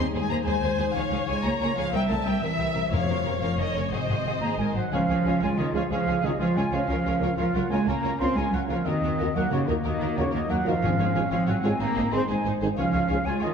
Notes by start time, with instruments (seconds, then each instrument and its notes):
Already playing: harp D#3 D#4, viola section G#4
0.13 double bass section D#2, harp G#3, violin section G#4 C5
0.21 cello section G#3, violin section G#5
0.29 double bass section D#2, cello section A#3, violin section G#4 C5 A#5, harp C5
0.45 double bass section D#2, cello section G#3, harp G#4, violin section G#4 C5 G#5, viola section C5
0.61 double bass section D#2, violin section G#4 C5, harp C5
0.77 double bass section D#2, harp D#4, violin section G#4 C5
0.94 double bass section C#2, harp C#3, cello section F3, violin section G#4 C#5 F5, viola section C#5
1.11 double bass section C#2, harp C#4, violin section G#4 C#5
1.27 double bass section C#2, cello section G#3, harp F4, violin section G#4 C#5 G#5
1.43 double bass section C#2, cello section A#3, violin section G#4 C#5 A#5, harp C#5
1.61 double bass section C#2, cello section A#3, harp F4, violin section G#4 C#5 A#5
1.76 double bass section C#2, cello section F3, harp G#3, violin section G#4 C#5 F5
1.92 double bass section C2, harp C3, cello section G3, violin section C4 A#4 G5, viola section E5
2.09 double bass section C2, harp G3, cello section A3, violin section C4 A#4 A5
2.26 double bass section C2, cello section G3, violin section C4 A#4 G5, harp G4
2.42 double bass section C2, cello section E3, violin section C4 A#4 E5, harp A#4
2.59 double bass section C2, violin section C4 A#4, harp G4
2.75 double bass section C2, harp C4, violin section C4 A#4
2.91 double bass section F1, harp F2, timpani F2, cello section F3, violin section C#4 A#4 F5, viola section C#5
3.07 double bass section F1, harp F3, violin section C#4 A#4
3.24 double bass section F1, violin section C#4 A#4, harp F4
3.41 double bass section F1, cello section F3, violin section C#4 A#4 F5, harp A#4
3.58 double bass section F1, cello section D#3, violin section C#4 A#4 D#5, harp F4
3.74 double bass section F1, cello section C#3, harp C#4, violin section C#4 A#4 C#5
3.91 double bass section G#1, harp G#2, cello section C3, violin section F#4 G#4 C5, viola section D#5
4.07 double bass section G#1, harp D#3, violin section F#4 G#4
4.24 double bass section G#1, harp F#4, violin section F#4 G#4
4.40 double bass section G#1, cello section A#3, harp G#4, violin section G#4, flute A#5, trumpet section A#5
4.58 double bass section G#1, cello section G#3, harp F#4, violin section A#4, flute G#5, trumpet section G#5
4.74 double bass section G#1, cello section F#3, harp D#4, violin section C5, flute F#5, trumpet section F#5
4.91 double bass section C#2, harp C#3, timpani C#3, cello section F3, clarinet C#4, viola section C#4, violin section G#4 C#5, flute F5, trumpet section F5
5.08 double bass section C#2, harp C#4, viola section C#4, violin section G#4 C#5
5.24 double bass section C#2, trombone section C#3 G#3, french horn section C#4 F4, viola section C#4, violin section G#4 C#5, harp G#4
5.42 double bass section C#2, cello section G#3, viola section C#4, harp F4, clarinet F4, violin section G#4 C#5, trumpet section G#5, flute G#5
5.58 double bass section C#2, cello section D#3, viola section C#4, violin section G#4 C#5, harp G#4, trumpet section D#5, flute D#5
5.73 double bass section C#2, trombone section C#3 G#3, cello section F3, french horn section C#4 F4, viola section C#4, harp F4, violin section G#4, flute F5, trumpet section F5
5.77 violin section C#5
5.90 double bass section C#2, cello section F3, harp G#3, viola section C#4, violin section G#4 C#5, clarinet G#4, trumpet section F5, flute F5
6.06 double bass section C#2, harp C#4, viola section C#4, violin section G#4 C#5
6.22 double bass section C#2, trombone section C#3 G#3, cello section D#3, viola section C#4, french horn section C#4 F4, violin section G#4, harp G#4, trumpet section D#5, flute D#5
6.26 violin section C#5
6.38 double bass section C#2, cello section F3, viola section C#4, clarinet F4, harp F4, violin section G#4, trumpet section F5, flute F5
6.43 violin section C#5
6.55 double bass section C#2, cello section G#3, viola section C#4, harp G#4, violin section G#4 C#5, trumpet section G#5, flute G#5
6.71 double bass section C#2, trombone section C#3 G#3, cello section F3, viola section C#4, french horn section C#4 F4, harp F4, violin section G#4 C#5, trumpet section F5, flute F5
6.88 double bass section C#2, harp C#3, clarinet C#4, viola section F4, violin section A#4 C#5
7.04 double bass section C#2, harp A#3, viola section F4, violin section A#4 C#5
7.19 double bass section C#2, trombone section C#3 A#3, french horn section C#4 F4, viola section F4, harp A#4, violin section C#5
7.24 violin section A#4
7.37 double bass section C#2, cello section F3, clarinet F4, harp F4, viola section F4, violin section A#4 C#5, flute F5, trumpet section F5
7.54 double bass section C#2, cello section F#3, viola section F4, harp A#4, violin section A#4 C#5, flute F#5, trumpet section F#5
7.69 double bass section C#2, trombone section C#3 A#3, cello section G#3, french horn section C#4 F4, harp F4, viola section F4, violin section A#4, trumpet section G#5, flute G#5
7.73 violin section C#5
7.86 double bass section C#2, harp C#3, cello section A#3, clarinet C#4, viola section F4, violin section A#4 C#5, flute A#5, trumpet section A#5
8.03 double bass section C#2, harp A#3, viola section F4, violin section A#4 C#5
8.19 double bass section C#2, trombone section C#3 A#3, cello section C4, french horn section C#4 F4, viola section F4, harp A#4, violin section A#4 C#5, trumpet section C6, flute C6
8.36 double bass section C#2, cello section G#3, harp F4, viola section F4, violin section A#4 C#5, flute G#5, trumpet section G#5
8.52 double bass section C#2, cello section F#3, viola section F4, harp A#4, violin section A#4 C#5, flute F#5, trumpet section F#5
8.68 double bass section C#2, trombone section C#3 A#3, cello section F3, french horn section C#4 F4, harp F4, viola section F4, violin section A#4 C#5, flute F5, trumpet section F5
8.84 double bass section D#2, harp D#3, cello section D#3, clarinet C4, viola section F#4, violin section A#4, trumpet section D#5, flute D#5
9.02 double bass section D#2, harp A#3, viola section F#4, violin section A#4
9.17 double bass section D#2, trombone section A#2 A#3, viola section F#4, french horn section F#4, harp A#4, violin section A#4
9.21 french horn section D#4, violin section A#4
9.35 double bass section D#2, cello section F#3, clarinet A#3, harp F#4, viola section F#4, violin section A#4, flute F#5, trumpet section F#5
9.50 double bass section D#2, cello section C#3, viola section F#4, harp A#4, violin section A#4, trumpet section C#5, flute C#5
9.67 double bass section D#2, trombone section A#2 A#3, cello section D#3, french horn section D#4 F#4, harp F#4, viola section F#4, violin section A#4, trumpet section D#5, flute D#5
9.83 double bass section D#2, cello section D#3, harp D#4, viola section F#4, violin section A#4, trumpet section D#5, flute D#5
10.01 double bass section D#2, harp A#3, viola section F#4, violin section A#4
10.16 double bass section D#2, trombone section A#2 A#3, cello section C#3, french horn section D#4 F#4, viola section F#4, harp A#4, violin section A#4, trumpet section C#5, flute C#5
10.31 double bass section D#2, cello section D#3, harp F#4, viola section F#4, violin section A#4, flute D#5, trumpet section D#5
10.35 violin section A#4
10.49 double bass section D#2, cello section F#3, viola section F#4, harp A#4, violin section A#4, trumpet section F#5, flute F#5
10.64 double bass section D#2, trombone section A#2 A#3, cello section F3, french horn section D#4 F#4, harp F#4, viola section F#4, violin section A#4, flute F5, trumpet section F5
10.81 double bass section G#1, harp G#2, timpani G#2, clarinet C#4, viola section F4, violin section G#4 C#5
10.98 double bass section G#1, harp G#3, viola section F4, violin section G#4 C#5
11.15 double bass section G#1, trombone section G#2 F3, french horn section C#4 G#4, viola section F4, violin section G#4 C#5, harp C#6
11.30 double bass section G#1, cello section F3, clarinet C4, harp F4, viola section F4, violin section G#4 C#5, flute F5, trumpet section F5
11.47 double bass section G#1, cello section F#3, viola section F4, violin section G#4 C#5, harp F5, flute F#5, trumpet section F#5
11.63 double bass section G#1, trombone section G#2 F3, cello section G#3, french horn section C#4 G#4, harp F4, viola section F4, violin section G#4 C#5, flute G#5, trumpet section G#5
11.80 double bass section G#1, harp G#2, cello section A#3, viola section D#4, violin section G#4 C5, flute A#5, trumpet section A#5
11.95 double bass section G#1, harp G#3, viola section D#4, violin section G#4 C5
12.11 double bass section G#1, trombone section G#2 D#3, cello section C4, french horn section C4 G#4, viola section D#4, violin section G#4 C5, harp C5, flute C6, trumpet section C6
12.28 double bass section G#1, cello section G#3, harp D#4, viola section D#4, violin section G#4 C5, flute G#5, trumpet section G#5
12.44 double bass section G#1, viola section D#4, violin section G#4 C5, harp C5
12.61 double bass section G#1, trombone section G#2 D#3, french horn section C4 G#4, harp D#4, viola section D#4, violin section G#4 C5
12.76 double bass section C#2, harp C#3, timpani C#3, cello section F3, clarinet C#4, viola section F4, violin section G#4 C#5, flute F5, trumpet section F5
12.93 double bass section C#2, harp C#4, viola section F4, violin section G#4 C#5
13.09 double bass section C#2, trombone section G#2 F3, french horn section C#4 G#4, viola section F4, violin section G#4 C#5, harp G#4
13.25 double bass section C#2, cello section G#3, viola section F4, clarinet F4, violin section G#4 C#5, harp C#5, flute G#5, trumpet section G#5
13.40 double bass section C#2, cello section D#3, viola section F4, violin section G#4 C#5, harp G#4, flute D#5, trumpet section D#5